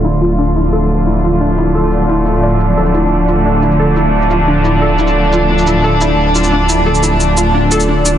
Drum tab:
SH |-xx---x---xx--x-|-xx---x---xx--x-|-xx---x---xx--x-|-xx---x---xx--x-|

SH |-xx---x---xx--x-|-xx-x-x---xx--x-|